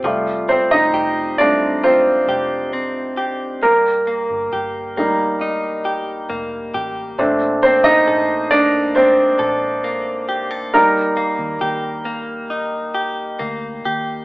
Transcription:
<<
  \new Staff \with { instrumentName = "Clean electric guitar" } { \time 4/4 \key f \mixolydian \tempo 4 = 68 f8 c'8 g'8 c'8 f'8 g'8 c'8 g'8 | g,8 bes8 g'8 bes8 ees'8 g'8 bes8 g'8 | bes,8 bes8 a'8 bes8 d'8 a'8 bes8 g'16 a'16 | r8 bes8 g'8 bes8 ees'8 g'8 bes8 g'8 | }
  \new Staff \with { instrumentName = "Grand piano" } { \time 4/4 \key f \mixolydian r8 <c' c''>16 <ees' ees''>8. <d' d''>8 <c' c''>2 | <bes bes'>2 r2 | r8 <c' c''>16 <ees' ees''>8. <d' d''>8 <c' c''>2 | bes'2 r2 | }
  \new Staff \with { instrumentName = "Grand piano" } { \time 4/4 \key f \mixolydian <g a f'>4. <g a f'>8 r2 | r4. <g bes ees'>8 r2 | <a c' d'>8 r2. r8 | <g bes ees'>8 r2. r8 | }
  \new Staff \with { instrumentName = "Fingered electric bass" } { \clef bass \time 4/4 \key f \mixolydian f,,8. f,,16 f,,4. f,,4. | g,,8. g,,16 g,,2 f,,8 a,,8 | bes,,8. bes,,16 bes,,4. bes,,4. | ees,8. ees,16 ees,2 d,8 ees,8 | }
>>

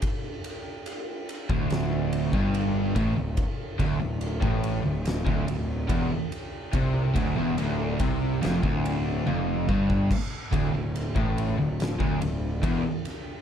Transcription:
<<
  \new Staff \with { instrumentName = "Distorted electric guitar" } { \clef bass \time 4/4 \key d \minor \tempo 4 = 71 r4. r16 d,4 g,8. a,16 d,16 | r8 d,16 d,8 a,8 d,8 d,16 d,8 e,16 r8. | c8 d,16 e,16 d,8 c8 f,16 d,8. f,8 g,8 | r8 d,16 d,8 a,8 d,8 d,16 d,8 e,16 r8. | }
  \new Staff \with { instrumentName = "Distorted electric guitar" } { \clef bass \time 4/4 \key d \minor r4. r16 d,4 g,8. a,16 d,16 | r8 d,16 d,8 a,8 d,8 d,16 d,8 e,16 r8. | c8 d,16 e,16 d,8 c8 f,16 d,8. f,8 g,8 | r8 d,16 d,8 a,8 d,8 d,16 d,8 e,16 r8. | }
  \new Staff \with { instrumentName = "Overdriven electric guitar" } { \clef bass \time 4/4 \key d \minor r4. r16 d,4 g,8. a,16 d,16 | r8 d,16 d,8 a,8 d,8 d,16 d,8 e,16 r8. | c8 d,16 e,16 d,8 c8 f,16 d,8. f,8 g,8 | r8 d,16 d,8 a,8 d,8 d,16 d,8 e,16 r8. | }
  \new Staff \with { instrumentName = "Picked electric bass" } { \clef bass \time 4/4 \key d \minor r4. r16 d,,4 g,,8. a,,16 d,,16 | r8 d,,16 d,,8 a,,8 d,,8 d,,16 d,,8 e,,16 r8. | c,8 d,,16 e,,16 d,,8 c,8 f,,16 d,,8. f,,8 g,,8 | r8 d,,16 d,,8 a,,8 d,,8 d,,16 d,,8 e,,16 r8. | }
  \new DrumStaff \with { instrumentName = "Drums" } \drummode { \time 4/4 <bd cymr>8 cymr8 cymr8 cymr16 bd16 <cymr sn>8 cymr16 bd16 cymr8 <bd cymr>8 | <bd cymr>8 <bd cymr>8 cymr16 bd16 cymr8 <cymr sn>16 bd16 cymr8 <bd cymr>8 cymr8 | <bd cymr>8 <bd cymr>8 cymr8 <bd cymr>8 <cymr sn>16 bd16 cymr8 tommh8 bd16 bd16 | <cymc bd>8 <bd cymr>8 cymr16 bd16 cymr8 <cymr sn>16 bd16 cymr8 <bd cymr>8 <cymr sn>8 | }
>>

